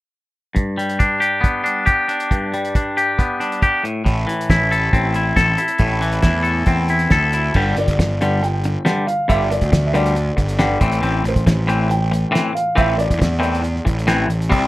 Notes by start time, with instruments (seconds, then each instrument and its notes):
0.55 clean electric guitar G2, kick, closed hi-hat
0.78 clean electric guitar G3, closed hi-hat
0.89 closed hi-hat
0.99 clean electric guitar D4, kick, closed hi-hat
1.20 clean electric guitar G4, closed hi-hat
1.41 clean electric guitar B3, kick, closed hi-hat
1.64 clean electric guitar D4, closed hi-hat
1.86 clean electric guitar G4, kick, closed hi-hat
2.08 clean electric guitar D4, closed hi-hat
2.20 closed hi-hat
2.31 clean electric guitar G2, kick, closed hi-hat
2.54 clean electric guitar G3, closed hi-hat
2.65 closed hi-hat
2.75 clean electric guitar D4, kick, closed hi-hat
2.97 clean electric guitar G4, closed hi-hat
3.18 clean electric guitar B3, kick, closed hi-hat
3.40 clean electric guitar D4, closed hi-hat
3.52 closed hi-hat
3.62 clean electric guitar G4, kick, closed hi-hat
3.83 clean electric guitar A2, closed hi-hat
4.05 picked electric bass A1, clean electric guitar A2, kick, closed hi-hat
4.27 clean electric guitar E3, closed hi-hat
4.41 closed hi-hat
4.50 picked electric bass A1, clean electric guitar E4, kick, snare, closed hi-hat
4.71 clean electric guitar A4, closed hi-hat
4.93 picked electric bass A1, clean electric guitar C4, kick, closed hi-hat
5.14 clean electric guitar E4, closed hi-hat
5.36 picked electric bass A1, clean electric guitar A4, kick, snare, closed hi-hat
5.58 clean electric guitar E4, closed hi-hat
5.68 closed hi-hat
5.78 picked electric bass A1, clean electric guitar A2, kick, closed hi-hat
6.01 clean electric guitar E3, closed hi-hat
6.12 closed hi-hat
6.22 picked electric bass E2, clean electric guitar E4, kick, snare, closed hi-hat
6.43 clean electric guitar A4, closed hi-hat
6.66 picked electric bass E2, clean electric guitar C4, kick, closed hi-hat
6.89 clean electric guitar E4, closed hi-hat
6.99 closed hi-hat
7.10 picked electric bass D2, clean electric guitar A4, kick, snare, closed hi-hat
7.33 clean electric guitar E4, closed hi-hat
7.54 picked electric bass G1, clean electric guitar G2 D3 G3, kick, crash
7.76 picked electric bass G1, clean electric guitar G2 D3, upright piano D5, closed hi-hat
7.88 picked electric bass G1, kick, closed hi-hat
7.99 picked electric bass G1, clean electric guitar G2 D3, kick, snare, closed hi-hat
8.21 clean electric guitar G2 D3 G3, closed hi-hat
8.43 clean electric guitar G2 D3, upright piano G5, closed hi-hat
8.64 clean electric guitar G2 D3, closed hi-hat
8.85 clean electric guitar G2 D3 G3, snare, closed hi-hat
9.07 clean electric guitar G2 D3, upright piano F5, closed hi-hat
9.28 picked electric bass G1, clean electric guitar G2 D3 G3, upright piano E5, kick, closed hi-hat
9.50 clean electric guitar G2 D3, upright piano D5, closed hi-hat
9.61 picked electric bass D2, kick, closed hi-hat
9.72 picked electric bass D2, clean electric guitar G2 D3, kick, snare, closed hi-hat
9.87 upright piano E5
9.94 clean electric guitar G2 D3 G3, upright piano D5, closed hi-hat
10.06 closed hi-hat
10.16 clean electric guitar G2 D3, closed hi-hat
10.37 picked electric bass G1, clean electric guitar G2 D3, kick, closed hi-hat
10.49 closed hi-hat
10.59 clean electric guitar G2 D3 G3, snare, closed hi-hat
10.80 picked electric bass A1, clean electric guitar A2 E3 C4, kick, closed hi-hat
10.92 closed hi-hat
11.01 picked electric bass A1, clean electric guitar A2 E3 C4, closed hi-hat
11.24 picked electric bass A1, clean electric guitar A2 E3, closed hi-hat
11.28 upright piano C5
11.36 picked electric bass A1, kick, closed hi-hat
11.47 picked electric bass A1, clean electric guitar A2 E3, kick, snare, closed hi-hat
11.67 clean electric guitar A2 E3 C4, closed hi-hat
11.89 clean electric guitar A2 E3, upright piano G5, closed hi-hat
12.11 clean electric guitar A2 E3, closed hi-hat
12.31 clean electric guitar A2 E3 C4
12.35 snare, closed hi-hat
12.53 clean electric guitar A2 E3, upright piano F5, closed hi-hat
12.75 picked electric bass A1, clean electric guitar A2 E3 C4, upright piano E5, kick, closed hi-hat
12.96 clean electric guitar A2 E3, upright piano D5, closed hi-hat
13.11 picked electric bass E2, kick, closed hi-hat
13.19 picked electric bass E2, clean electric guitar A2 E3, kick, snare, closed hi-hat
13.39 clean electric guitar A2 E3 C4, upright piano D5
13.43 closed hi-hat
13.55 closed hi-hat
13.62 clean electric guitar A2 E3, closed hi-hat
13.76 snare
13.85 picked electric bass A1, clean electric guitar A2 E3, kick, closed hi-hat
13.99 closed hi-hat
14.07 clean electric guitar A2 E3 C4, snare, closed hi-hat
14.28 picked electric bass A1, clean electric guitar A2 E3, closed hi-hat
14.42 closed hi-hat
14.49 picked electric bass C2, clean electric guitar C3 G3 C4, kick, closed hi-hat